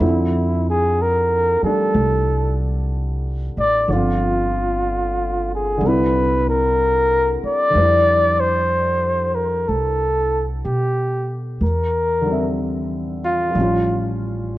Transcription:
Already playing: E4
0.00 F2 D3 F3 C4 E4
0.69 G#4
1.01 A#4
1.62 G3 A3 A4, muted upright bass stroke
1.67 D4
1.94 C2
3.57 A1 D5
3.88 G1 D3 F3 C4 F4
3.93 F4
5.55 G#4
5.78 C2 D3 G3
5.85 C4 E4 B4
6.49 A#4
7.43 D5, muted upright bass stroke
7.70 D3 G3
7.75 F2 C5
7.81 E4
8.40 C5
9.35 A#4
9.68 C2 A4
10.65 B2 G4
11.61 E2 A#4
12.21 D3 G3
12.29 C4 E5
13.24 F4
13.51 F3
13.55 A1 G3 C#4
13.62 F4

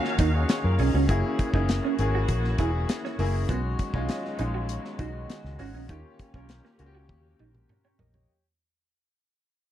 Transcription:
Already playing: D#3 F#3 A#3 C#4 F4 F#4 G#4 F5
0.05 snare
0.19 D#2 D#4 A#4 D#5, kick, closed hi-hat
0.34 G#4 C#5
0.49 G#4 C#5, muted clean electric guitar stroke, snare, closed hi-hat
0.64 F#2 F4 A#4
0.79 B1 C#4 D#4 G#4, open hi-hat
0.94 C#2 C#4 F#4
1.08 F#1 E3 A#3 C#4 E4 F#4 G#4, kick, closed hi-hat
1.39 muted clean electric guitar stroke, kick, closed hi-hat
1.53 F#1 A#3 C#4 D#4 E4 G#4, kick
1.69 snare, closed hi-hat
1.85 C#4
1.99 G#1 A#3 C#4 E4 G#4, muted clean electric guitar stroke, closed hi-hat
2.15 F#4
2.28 A#1, kick, closed hi-hat
2.44 snare
2.58 E1 A#3 C#4 E4 G#4, kick, closed hi-hat
2.89 muted clean electric guitar stroke, snare, closed hi-hat
3.05 C#4, snare
3.19 F#1 A#3 C#4 E4 G#4, open hi-hat
3.49 B1 D#3 F#3 G#3 B3 C#4 D#4 F#4, kick, closed hi-hat
3.79 muted clean electric guitar stroke, kick, closed hi-hat
3.94 B1 G#3 C#4 D#4 F4, kick
4.09 muted clean electric guitar stroke, snare, closed hi-hat
4.25 snare
4.39 A#1 G#3 C#4 D#4 F4, closed hi-hat
4.54 F#4
4.69 closed hi-hat
4.85 snare
4.99 B1 G#3 C#4 D#4 F#4, kick, closed hi-hat
5.30 muted clean electric guitar stroke, snare, closed hi-hat
5.44 C#2, snare
5.59 G#1 G#3 C#4 D#4 F#4, open hi-hat
5.74 A#1 C#4
5.89 D#2 A#3 C#4 D#4 F4 G4, kick, closed hi-hat
6.19 muted clean electric guitar stroke, kick, closed hi-hat
6.34 B1 A#3 C#4 F4 A#4, kick
6.49 snare, closed hi-hat
6.65 A#3, snare
6.79 C#2 A#3 C#4 F4 F#4, muted clean electric guitar stroke, closed hi-hat
6.86 G4
6.95 F#4
7.09 D#2, kick, high tom
7.39 A#1 D#4, mid tom
7.55 mid tom
7.69 muted clean electric guitar stroke, mid tom
7.84 C#4 C#5 G5
7.99 A#1 A#3 A#4 D#5, floor tom
8.14 G4 C#5, floor tom

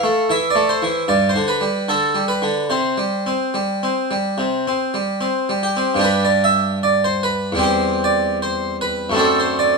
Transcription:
Already playing: F5
0.03 A3
0.30 E3 E5
0.50 D5
0.55 A3
0.69 C5
0.82 E3
1.08 G2 D5
1.29 C5
1.36 D3
1.48 B4
1.61 G3
1.89 D3 A4
2.15 G3
2.28 B4
2.42 D3
2.70 C3 C5
2.98 G3
3.26 C4
3.54 G3
3.83 C4
4.11 G3
4.38 C3
4.67 C4
4.94 G3
5.21 C4
5.49 G3
5.63 G4
5.77 C4
5.94 G2 G3
5.99 D4 G4
6.04 B4
6.25 D5
6.44 E5
6.83 D5
7.04 C5
7.23 B4
7.52 E2 G3
7.57 C4 G4
7.63 C5
8.04 D5
8.42 C5
8.81 B4
9.10 F#2 A3
9.14 C4 D4
9.19 A4
9.40 C5
9.59 D5

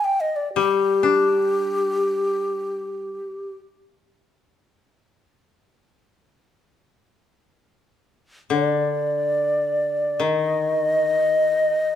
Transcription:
0.05 G5
0.21 D#5
0.36 D5
0.55 G3 G4
1.03 D4
8.50 D3 C#5
8.64 D5
10.20 D#3 D#5

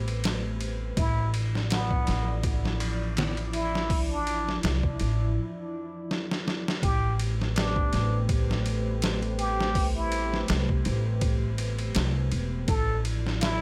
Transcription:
Already playing: A1 A3 G4 B4 C5
0.08 ride
0.24 snare, ride
0.61 ride
0.97 A1 F3 E4 D5, kick, ride
1.34 ride
1.55 snare
1.70 B3, snare, ride
1.91 kick
2.07 A1, snare, ride
2.43 kick, ride
2.65 snare
2.80 ride
3.17 snare, ride
3.37 ride
3.53 E4, ride
3.75 snare
3.90 kick, open hi-hat
4.11 D4
4.27 ride
4.49 snare
4.63 C2, snare, ride
4.83 kick
5.00 A1, ride
6.11 snare
6.31 snare
6.48 snare
6.68 snare
6.83 A1 A3 G4 B4 C5, kick, ride
7.20 ride
7.41 snare
7.56 D4, snare, ride
7.76 kick
7.93 A1, snare, ride
8.29 kick, ride
8.51 snare
8.66 ride
9.02 snare, ride
9.22 ride
9.39 G4, ride
9.61 snare
9.75 kick, open hi-hat
9.96 E4
10.12 ride
10.34 snare
10.48 C2, snare, ride
10.69 kick
10.85 A1, ride
11.21 kick, ride
11.58 ride
11.79 ride
11.95 C2, snare, ride
12.32 E1, ride
12.68 A1 F3 E4 A4 D5, kick, ride
13.05 ride
13.27 snare
13.41 E4, snare, ride

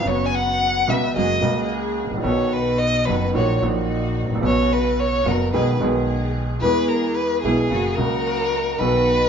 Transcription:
0.04 F#1 F#2 C#3 F#3 B3 C#4 F#4 B4 C#5
0.09 F#4
0.26 G#5
0.35 F#5
0.87 C#2 C#3 F#3 B3 C#4 F#4 B4 E5
1.16 F#1 F#2 C#3 F#3 G#3 A#3 F#4 G#4 D#5
1.42 C#2 C#3 G#3 A#3 F#4 G#4
2.04 G#1
2.11 A1
2.17 A#1
2.22 B1 B2 D#3 F#3 B3 C#5
2.26 B3 D#4 F#4
2.53 B4
2.78 D#5
3.05 F#1 F#2 D#3 F#3 B3 D#4 F#4 B4
3.34 A#1 A#2 D#3 F#3 A#3 D#4 F#4 C#5
3.61 A#1 A#2 D#3 F#3 A#3 D#4 F#4
4.23 G#1
4.30 A1
4.35 A#1
4.40 B1 B2 C#3 F#3 B3 C#4 F#4
4.45 F#4 C#5
4.72 B4
4.99 C#5
5.24 F#1 F#2 C#3 F#3 B3 C#4 F#4 A#4
5.51 B1 B2 D#3 G#3 B3 D#4 G#4 B4
5.79 B1 B2 D#3 G#3 B3 D#4 G#4
5.83 G#4
6.61 E2 E3 G#3 B3 E4 G#4 B4
6.88 A#4
7.14 B4
7.42 B1 B2 E3 G#3 B3 E4 G#4
7.70 F#1 F#2 C#3 F#3 A#3 C#4 F#4
7.95 C#2 C#3 F#3 A#3 C#4 F#4 A#4
7.99 A#3 F#4
8.78 B1 B2 D#3 F#3 B3 D#4 F#4 B4
8.83 F#4

